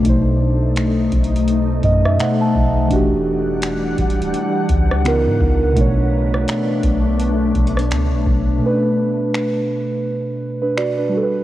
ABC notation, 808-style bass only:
X:1
M:4/4
L:1/16
Q:"Swing 16ths" 1/4=84
K:Bm
V:1 name="808-style bass" clef=bass
B,,,6 B,,,4 F,,2 z2 B,,,2 | E,,,6 D,,,2 z2 C,,3 ^G,, C,,2 | B,,,4 z2 B,,,4 B,,,2 C,, B,,, B,,,2 | z16 |]